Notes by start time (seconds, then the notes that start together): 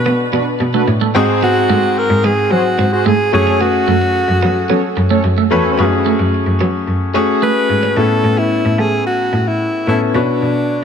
Already playing: B2 B3 D4 F#4 B4
0.06 B3
0.33 B2 B3 D4 F#4 B4
0.60 B2, muted clean electric guitar stroke
0.74 A3 D4 F#4 B4
0.88 A2, muted clean electric guitar stroke
1.01 A3
1.15 G#2 C4 D#4 F#4 G#4 C5
1.43 B3 F#4
1.69 G#2 A3
1.83 muted clean electric guitar stroke
1.98 A#4
2.10 G#2
2.24 G#3 B3 G#4
2.51 F#3 F#4 G#4 C5
2.79 G#2 C4
2.92 F#4 G#4 C5
3.06 G#2 A3 G#4
3.33 F#2 A3 C#4 F#4 G#4 A4 C#5, muted clean electric guitar stroke
3.47 C#4
3.61 B3 F#4
3.88 F#2 A3
4.02 muted clean electric guitar stroke
4.29 F#2
4.42 F#3 B3
4.69 F#3 B3 C#4 A4 C#5
4.97 F#2, muted clean electric guitar stroke
5.10 A3 C#4 A4 C#5
5.24 F#2, muted clean electric guitar stroke
5.38 A3
5.51 E2 A3 C#4 F#4 A4 B4 C#5
5.78 F#2 A3 B3 C#4 F#4 G#4
6.06 A3
6.20 F#2, muted clean electric guitar stroke
6.47 F#2
6.60 F#3 B3
6.88 F#2
7.14 A3 C#4 F#4 G#4
7.42 A3 B4
7.69 G#2, muted clean electric guitar stroke
7.83 C#4
7.96 A2 B3 C#4 E4 A4
8.24 A2
8.38 E4
8.65 A2
8.78 A3 G#4
9.07 F#4
9.33 A2
9.48 E4
9.87 A2 B3 C#4 E4 A4
10.14 B2 D4 F#4 B4 C#5
10.42 B2